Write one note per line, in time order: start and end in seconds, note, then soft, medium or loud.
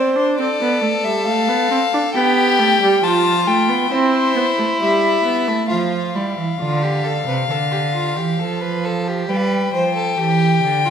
0.00 0.17 C4 medium
0.00 0.39 C5 medium
0.00 0.14 D5 medium
0.16 0.38 D4 medium
0.16 0.37 C5 medium
0.37 0.47 C4 medium
0.37 2.17 A4 medium
0.37 1.05 D5 medium
0.61 0.82 B3 medium
0.82 0.90 A3 medium
1.04 1.28 G3 medium
1.04 1.25 E5 medium
1.26 1.50 A3 medium
1.26 2.13 F5 loud
1.49 1.70 B3 medium
1.71 1.79 C4 medium
1.93 2.01 D4 medium
2.14 2.60 B3 medium
2.14 3.02 G4 loud
2.14 3.04 G5 loud
2.59 2.81 A3 medium
2.81 3.03 G3 medium
3.03 3.49 F3 medium
3.03 3.90 F4 loud
3.03 3.48 A5 loud
3.46 3.71 A3 medium
3.46 3.93 G5 loud
3.69 3.91 B3 medium
3.90 4.35 C4 medium
3.90 5.66 E4 loud
3.90 4.81 C5 loud
4.36 4.44 B3 medium
4.58 4.66 A3 medium
4.81 5.24 G3 medium
4.81 5.69 E5 medium
5.25 5.49 B3 medium
5.47 5.70 A3 medium
5.69 6.16 F3 medium
5.69 6.17 F4 medium
5.69 9.25 F5 medium
6.15 6.37 G3 medium
6.15 6.59 E4 medium
6.37 6.45 E3 medium
6.60 7.26 D3 medium
6.60 6.84 F4 medium
6.82 7.06 G4 medium
7.04 7.27 A4 medium
7.27 7.49 C3 medium
7.27 7.36 B4 medium
7.49 8.18 D3 medium
7.49 7.58 A4 medium
7.71 7.79 G4 medium
7.93 8.18 F4 medium
8.16 8.39 E3 medium
8.16 8.41 G4 medium
8.40 9.28 F3 medium
8.40 8.63 A4 medium
8.61 8.86 B4 medium
8.85 9.09 A4 medium
9.07 9.31 G4 medium
9.29 9.73 G3 medium
9.29 9.73 B4 medium
9.29 9.37 G5 medium
9.36 9.44 F5 medium
9.43 10.90 G5 medium
9.73 10.18 F3 medium
9.73 9.95 C5 medium
9.95 10.19 A4 medium
10.18 10.62 E3 medium
10.18 10.84 G4 medium
10.64 10.90 D3 medium
10.85 10.90 F4 medium